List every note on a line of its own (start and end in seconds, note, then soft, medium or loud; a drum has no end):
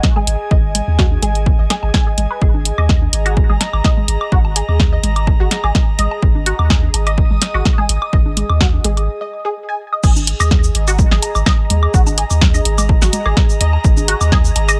0.00 9.08 G#4 medium
0.00 9.08 D#5 medium
0.00 3.01 G#5 medium
0.00 kick loud
0.00 snare medium
0.00 closed hi-hat soft
0.16 0.19 G#4 medium
0.16 low conga medium
0.16 high woodblock medium
0.27 0.36 G#1 medium
0.27 closed hi-hat medium
0.51 0.81 G#1 loud
0.51 0.57 D#5 medium
0.51 kick loud
0.75 closed hi-hat medium
0.75 low conga medium
0.88 1.17 D#2 loud
0.99 1.05 F#4 loud
0.99 kick loud
0.99 snare medium
0.99 high woodblock medium
1.11 high conga medium
1.22 1.53 G#1 loud
1.22 1.26 G#4 medium
1.22 closed hi-hat medium
1.22 low conga medium
1.35 closed hi-hat soft
1.46 kick loud
1.59 1.67 G#1 medium
1.59 1.64 D#5 medium
1.70 1.74 G#4 loud
1.70 snare medium
1.70 closed hi-hat medium
1.83 1.90 G#1 medium
1.83 high woodblock medium
1.94 2.00 G#5 medium
1.94 kick loud
1.94 snare loud
1.94 closed hi-hat soft
2.07 2.12 G#4 medium
2.18 2.26 G#1 medium
2.18 closed hi-hat medium
2.18 low conga medium
2.31 2.34 B4 medium
2.41 2.72 G#1 loud
2.41 2.45 G#4 medium
2.41 kick loud
2.54 high conga medium
2.65 closed hi-hat medium
2.78 3.07 D#2 loud
2.78 2.83 D#5 medium
2.78 high woodblock medium
2.89 kick loud
2.89 snare medium
2.98 6.82 A#5 medium
2.98 high conga soft
3.13 3.43 G#1 loud
3.13 closed hi-hat medium
3.26 3.31 F#4 loud
3.26 closed hi-hat soft
3.26 high woodblock soft
3.37 kick loud
3.50 3.57 G#1 medium
3.50 3.53 G#4 medium
3.50 low conga medium
3.61 snare medium
3.61 closed hi-hat medium
3.61 high woodblock medium
3.73 3.81 G#1 medium
3.73 high woodblock medium
3.84 3.90 D#5 medium
3.84 kick loud
3.84 snare medium
3.84 closed hi-hat soft
3.97 low conga medium
4.08 4.17 G#1 medium
4.08 closed hi-hat medium
4.21 high woodblock medium
4.32 4.62 G#1 loud
4.32 4.38 F#4 loud
4.32 kick loud
4.45 high woodblock medium
4.56 4.59 G#4 medium
4.56 closed hi-hat medium
4.69 4.98 D#2 loud
4.69 high woodblock soft
4.80 kick loud
4.80 snare medium
4.93 4.98 D#5 medium
5.03 5.34 G#1 loud
5.03 closed hi-hat medium
5.03 low conga medium
5.16 closed hi-hat soft
5.16 high woodblock medium
5.27 kick loud
5.27 high woodblock medium
5.40 5.48 G#1 medium
5.40 5.45 F#4 loud
5.51 snare medium
5.51 closed hi-hat medium
5.64 5.71 G#1 medium
5.64 5.67 G#4 medium
5.64 high woodblock medium
5.75 kick loud
5.75 snare medium
5.75 closed hi-hat soft
5.99 6.07 G#1 medium
5.99 6.05 D#5 medium
5.99 closed hi-hat medium
5.99 low conga medium
6.11 high woodblock medium
6.22 6.53 G#1 loud
6.22 kick loud
6.35 high conga medium
6.46 6.52 F#4 loud
6.46 closed hi-hat medium
6.59 6.88 D#2 loud
6.59 high woodblock medium
6.70 6.74 G#4 medium
6.70 kick loud
6.70 snare medium
6.79 9.11 D#6 medium
6.79 high conga soft
6.94 7.24 G#1 loud
6.94 closed hi-hat medium
6.94 high woodblock medium
7.07 7.12 D#5 medium
7.07 closed hi-hat soft
7.07 high woodblock medium
7.18 kick loud
7.31 7.38 G#1 medium
7.31 low conga medium
7.42 snare medium
7.42 closed hi-hat medium
7.54 7.62 G#1 medium
7.54 7.60 F#4 loud
7.54 high woodblock soft
7.65 kick loud
7.65 snare medium
7.65 closed hi-hat soft
7.78 7.81 G#4 medium
7.78 low conga medium
7.78 high woodblock medium
7.89 7.98 G#1 medium
7.89 closed hi-hat medium
8.02 high woodblock medium
8.13 8.43 G#1 loud
8.13 8.19 D#5 medium
8.13 kick loud
8.26 high conga medium
8.37 closed hi-hat medium
8.37 low conga medium
8.50 8.79 D#2 loud
8.50 high woodblock medium
8.61 8.67 F#4 loud
8.61 kick loud
8.61 snare medium
8.61 high woodblock medium
8.73 high conga soft
8.84 9.08 G#1 loud
8.84 8.88 G#4 medium
8.84 closed hi-hat medium
8.84 low conga medium
8.97 closed hi-hat soft
8.97 high woodblock soft
9.21 9.26 D#5 medium
9.45 9.48 G#4 loud
9.69 9.77 G#5 medium
9.93 9.98 D#5 medium
10.03 10.34 G#1 loud
10.03 14.80 G#4 medium
10.03 10.07 G#4 medium
10.03 kick loud
10.03 crash loud
10.03 shaker soft
10.16 high conga medium
10.16 shaker soft
10.27 closed hi-hat medium
10.40 10.69 D#2 loud
10.40 10.45 D#5 medium
10.40 high woodblock medium
10.40 shaker soft
10.51 14.80 D#5 medium
10.51 kick loud
10.51 snare medium
10.64 14.80 A#5 medium
10.64 shaker soft
10.75 11.05 G#1 loud
10.75 closed hi-hat medium
10.88 10.93 F#4 loud
10.88 closed hi-hat soft
10.88 high woodblock soft
10.88 shaker soft
10.99 kick loud
10.99 low conga medium
10.99 shaker soft
11.11 11.19 G#1 medium
11.11 11.15 G#4 medium
11.11 snare medium
11.22 closed hi-hat medium
11.22 high woodblock medium
11.22 shaker soft
11.35 11.43 G#1 medium
11.35 high woodblock medium
11.35 shaker soft
11.46 11.52 D#5 medium
11.46 kick loud
11.46 snare loud
11.46 closed hi-hat soft
11.70 11.87 D#2 loud
11.70 closed hi-hat medium
11.70 low conga medium
11.83 high woodblock medium
11.94 12.24 G#1 loud
11.94 12.00 F#4 loud
11.94 kick loud
11.94 shaker soft
12.07 high conga medium
12.07 high woodblock medium
12.07 shaker soft
12.18 12.21 G#4 medium
12.18 closed hi-hat loud
12.30 12.60 D#2 loud
12.30 high woodblock soft
12.30 shaker soft
12.41 kick loud
12.41 snare medium
12.54 12.60 D#5 medium
12.54 high conga medium
12.54 shaker soft
12.65 12.95 G#1 loud
12.65 closed hi-hat medium
12.78 closed hi-hat soft
12.78 low conga medium
12.78 high woodblock medium
12.78 shaker soft
12.89 kick loud
12.89 high woodblock medium
13.02 13.09 G#1 medium
13.02 13.07 F#4 loud
13.02 snare medium
13.02 shaker medium
13.13 closed hi-hat loud
13.13 low conga medium
13.13 shaker soft
13.26 13.33 G#1 medium
13.26 13.29 G#4 medium
13.26 high woodblock medium
13.37 kick loud
13.37 snare loud
13.37 closed hi-hat soft
13.50 shaker soft
13.61 13.77 D#2 loud
13.61 13.67 D#5 medium
13.61 closed hi-hat loud
13.73 high woodblock medium
13.84 14.14 G#1 loud
13.84 kick loud
13.84 shaker soft
13.97 high conga medium
13.97 shaker soft
14.08 14.14 F#4 medium
14.08 closed hi-hat medium
14.21 14.50 D#2 loud
14.21 high woodblock medium
14.21 shaker soft
14.32 14.36 G#4 medium
14.32 kick loud
14.32 snare medium
14.45 shaker soft
14.56 14.80 G#1 loud
14.56 closed hi-hat loud
14.56 high woodblock medium
14.68 14.74 D#5 medium
14.68 closed hi-hat soft
14.68 high woodblock medium
14.68 shaker soft